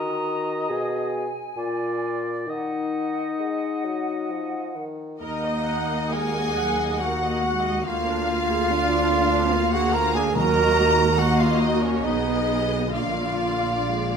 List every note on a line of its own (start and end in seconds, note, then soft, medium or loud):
0.00 0.69 D#3 medium
0.00 0.71 F#4 medium
0.00 1.30 D#5 medium
0.00 0.68 A#5 soft
0.69 1.27 B2 soft
0.69 1.28 G#4 medium
0.69 2.21 G#5 soft
1.57 2.44 A#2 soft
1.57 2.48 F4 medium
1.57 2.51 D5 soft
2.47 3.29 D#3 soft
2.47 4.76 D#4 soft
2.47 4.90 D#5 soft
2.47 4.85 F#5 soft
3.39 3.86 G#3 soft
3.85 4.31 F#3 soft
4.30 4.77 F3 soft
4.76 5.21 D#3 soft
5.21 7.82 D#2 soft
5.21 7.84 A#3 soft
5.21 6.10 A#3 medium
5.21 6.15 D#4 medium
5.21 5.42 A#4 soft
5.21 6.10 D#5 medium
5.21 7.82 F#5 soft
5.45 5.68 D#5 soft
5.68 5.91 F#5 soft
5.91 6.14 D#5 soft
6.13 6.58 G#3 soft
6.13 7.02 G#4 medium
6.13 6.36 A#4 soft
6.13 7.00 G#5 medium
6.35 6.57 D#5 soft
6.58 7.01 F#3 soft
6.58 6.79 F#5 soft
6.79 7.01 D#5 soft
7.00 7.43 A#3 medium
7.00 7.86 F#4 medium
7.00 7.22 A#4 soft
7.00 7.86 F#5 medium
7.21 7.43 D#5 soft
7.43 7.86 G#3 medium
7.43 7.65 F#5 medium
7.64 7.86 D#5 soft
7.85 10.32 D2 medium
7.85 8.05 A#3 medium
7.85 8.68 A#3 medium
7.85 9.75 F4 medium
7.85 9.70 F5 medium
7.85 10.32 F5 medium
8.07 8.28 D4 medium
8.27 8.49 F4 medium
8.49 8.70 G#4 medium
8.70 9.53 D4 medium
8.70 8.91 F4 medium
8.91 9.12 D4 medium
9.12 9.32 A#3 medium
9.32 9.53 D4 medium
9.53 10.36 A#3 medium
9.53 9.73 F4 medium
9.73 9.95 F#4 medium
9.73 9.94 G#4 medium
9.73 9.94 F#5 medium
9.93 10.15 F4 medium
9.93 10.14 A#4 medium
9.93 10.15 A#5 medium
10.15 10.36 D4 medium
10.15 10.35 G#4 medium
10.15 10.36 G#5 medium
10.35 11.88 D#2 medium
10.35 12.01 D#2 medium
10.35 11.57 D#3 medium
10.35 10.77 F#3 medium
10.35 11.15 A#3 medium
10.35 11.15 F#4 medium
10.35 11.20 A#4 loud
10.35 11.16 D#5 medium
10.35 11.18 A#5 medium
10.78 11.20 G#3 medium
11.19 12.04 A#3 medium
11.19 12.03 A#3 medium
11.19 12.02 F#4 medium
11.19 11.42 F#4 medium
11.19 12.03 D#5 medium
11.19 11.41 F#5 medium
11.40 11.62 F4 medium
11.40 11.61 F5 medium
11.60 11.85 D#4 medium
11.60 11.83 D#5 medium
11.83 12.06 C#4 medium
11.83 12.04 C#5 medium
12.03 12.98 B1 medium
12.03 12.94 B1 soft
12.03 12.95 B3 medium
12.03 12.65 D#4 medium
12.03 12.94 G#4 medium
12.03 12.95 D#5 medium
12.03 12.93 D#5 medium
12.93 14.17 A#1 soft
12.93 14.17 D3 soft
12.93 13.75 A#3 soft
12.93 13.75 F4 medium
12.93 14.17 F4 medium
12.93 14.17 D5 medium
12.93 14.17 F5 medium
13.84 14.17 G#3 medium